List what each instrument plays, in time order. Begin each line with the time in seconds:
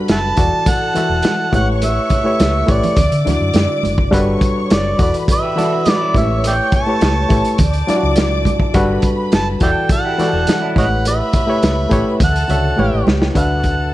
Already playing: reed electric piano G3 D4 F#4 A4 B4, string section B4 B5
0.08 fingered electric bass F#1, harmonica E5 F#5 A5, snare, closed hi-hat, high conga
0.36 fingered electric bass E1, reed electric piano E3 E4 F#4 A4 D5, string section A4 A5, kick, closed hi-hat
0.66 harmonica F#5, kick, closed hi-hat, muted conga
0.95 reed electric piano E3 E4 F#4 A4 E5, muted fingered electric bass stroke, closed hi-hat, muted conga
1.09 fingered electric bass E1
1.23 snare, closed hi-hat, high conga
1.52 fingered electric bass A1, reed electric piano A3 E4 G4 B4 C#5, string section C#5 C#6, harmonica F#5, kick, closed hi-hat, high conga
1.82 harmonica E5, closed hi-hat, muted conga
2.10 kick, closed hi-hat, muted conga
2.24 reed electric piano A3 E4 G4 B4 C#5
2.40 fingered electric bass C#2, snare, closed hi-hat, high conga
2.66 fingered electric bass A1, reed electric piano A3 E4 G4 B4 C#5, harmonica D5, kick, closed hi-hat
2.83 closed hi-hat, low conga
2.97 fingered electric bass D2, string section D5 D6, kick, closed hi-hat, muted conga, low conga
3.12 fingered electric bass D3, closed hi-hat
3.25 fingered electric bass D2, reed electric piano D3 D4 E4 F#4 D5, snare, closed hi-hat, muted conga, low conga
3.41 fingered electric bass F#2
3.54 fingered electric bass F#2, snare, closed hi-hat, high conga
3.83 fingered electric bass F#1, closed hi-hat, high conga
3.98 kick
4.11 fingered electric bass G1, reed electric piano G3 D4 F#4 A4 B4, string section C#5 C#6, kick, closed hi-hat, muted conga
4.41 kick, closed hi-hat
4.70 fingered electric bass F#1, harmonica D5, snare, closed hi-hat, high conga
4.98 fingered electric bass E1, reed electric piano E3 E4 F#4 A4 D5, string section B4 B5, kick, closed hi-hat
5.03 harmonica D5
5.14 closed hi-hat
5.28 kick, closed hi-hat, muted conga
5.33 harmonica E5
5.43 clean electric guitar G4 B4
5.55 reed electric piano E3 E4 F#4 A4 D5, clean electric guitar F#4 A4, closed hi-hat, muted conga
5.60 snare
5.73 clean electric guitar D4 F#4
5.86 snare, closed hi-hat, high conga
5.91 harmonica D5
6.01 clean electric guitar C#4 E4
6.14 fingered electric bass A1, reed electric piano A3 E4 G4 B4 C#5, string section C#5 C#6, harmonica E5, kick, closed hi-hat, high conga
6.44 harmonica D5 E5 G5, closed hi-hat, muted conga
6.72 harmonica A5, kick, closed hi-hat, muted conga
6.87 reed electric piano A3 E4 G4 B4 C#5
7.01 fingered electric bass C#2, snare, closed hi-hat, high conga
7.29 fingered electric bass A1, reed electric piano A3 E4 G4 B4 C#5, kick, closed hi-hat
7.45 closed hi-hat
7.58 fingered electric bass D2, string section D5 D6, kick, closed hi-hat, muted conga, low conga
7.73 closed hi-hat
7.87 reed electric piano F#3 D4 E4 F4 D5, snare, closed hi-hat, muted conga
7.96 reed electric piano F#4
8.03 fingered electric bass C#2
8.16 snare, closed hi-hat, high conga
8.45 kick, closed hi-hat, high conga
8.60 kick
8.74 fingered electric bass G1, reed electric piano G3 D4 F#4 A4 B4, string section B4 B5, kick, closed hi-hat, muted conga
9.02 kick, closed hi-hat, muted conga
9.32 fingered electric bass F#1, harmonica A5, snare, closed hi-hat, high conga
9.60 fingered electric bass E1, reed electric piano E3 E4 F#4 A4 D5, string section A4 A5, harmonica D5 E5 G5, kick, closed hi-hat
9.89 harmonica F#5, kick, closed hi-hat, muted conga
10.05 clean electric guitar E4 G4
10.18 reed electric piano E3 E4 F#4 A4 D5, muted fingered electric bass stroke, snare, closed hi-hat, muted conga
10.33 fingered electric bass E1, clean electric guitar F#4 A4
10.47 clean electric guitar D4 F#4, snare, closed hi-hat, high conga
10.62 clean electric guitar C#4 E4
10.75 fingered electric bass A1, reed electric piano A3 E4 G4 B4 C#5, string section B4 B5, harmonica C#5 D#5 F#5, kick, closed hi-hat, high conga
11.05 harmonica E5, closed hi-hat, muted conga
11.33 kick, closed hi-hat
11.47 reed electric piano A3 E4 G4 B4 C#5
11.63 fingered electric bass C#2, snare, closed hi-hat, high conga
11.90 fingered electric bass A1, reed electric piano A3 E4 G4 B4 C#5, kick, closed hi-hat
12.20 fingered electric bass D2, string section A4 A5, harmonica F#5, kick, closed hi-hat, muted conga, low conga
12.36 closed hi-hat
12.48 fingered electric bass C#2, reed electric piano D3 D4 F#4 C#5 E5, closed hi-hat, muted conga
12.77 fingered electric bass A1, reed electric piano A3 E4 G4 B4 C#5, string section G4 G5, high conga
12.93 fingered electric bass A1
13.07 fingered electric bass C#2, snare, high conga
13.22 snare
13.34 fingered electric bass D2, reed electric piano D3 D4 F#4 B4 E5, string section A4 A5, harmonica F#5, kick, closed hi-hat, muted conga
13.63 kick, closed hi-hat